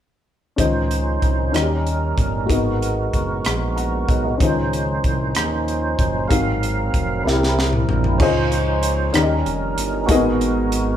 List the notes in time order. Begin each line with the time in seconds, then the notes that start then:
0.56 C#2 D#3 F3 C#4 F4 G#4 C5 D#5, kick, closed hi-hat
0.60 D#4
0.91 closed hi-hat
1.22 C2, kick, closed hi-hat
1.52 D#2 D#3 G3 C#4 D#4 F#4 A#4 D#5, closed hi-hat
1.56 cross-stick
1.60 G4
1.87 closed hi-hat
2.18 G1, kick, closed hi-hat
2.45 G#2 G#3 A#3 B3 F#4 G#4 A#4
2.50 G#1 B3 A#4 D#5, kick, closed hi-hat
2.82 closed hi-hat
3.13 F#1, kick, closed hi-hat
3.45 A#1, cross-stick, closed hi-hat
3.76 F#5 A#5, closed hi-hat
4.08 B1 D#5 F#5, kick, closed hi-hat
4.25 B4 D#5
4.38 C#2 D#3 F3 C#4 F4 G#4, kick, closed hi-hat
4.42 C#4 D#4 C5 D#5
4.73 closed hi-hat
5.04 C2, kick, closed hi-hat
5.35 D#2, cross-stick, closed hi-hat
5.68 closed hi-hat
5.99 F#1, kick, closed hi-hat
6.27 G#1 G#2 F#3 C4 F#4 G#4 A#4 F5, kick, closed hi-hat
6.63 closed hi-hat
6.94 F1, kick, closed hi-hat
7.23 C2 C3 G3 C4 E4 G4 A#4 E5
7.27 snare
7.43 snare
7.59 snare
7.73 mid tom
7.89 A#1, floor tom
8.04 floor tom
8.18 C#2 C#3 F3 C#4 D#4 F4 G#4 C5, kick, crash
8.22 D#5
8.52 closed hi-hat
8.83 closed hi-hat
9.12 D#2 D#3 G3 C#4 D#4 G4 A#4 D5, cross-stick, closed hi-hat
9.23 D#5
9.46 F1, closed hi-hat
9.77 G1, closed hi-hat
10.06 G#1 G#2 G#3 A#3 B3 F#4 G#4 A#4, kick, closed hi-hat
10.10 A#4 D#5
10.15 B3
10.41 closed hi-hat
10.72 closed hi-hat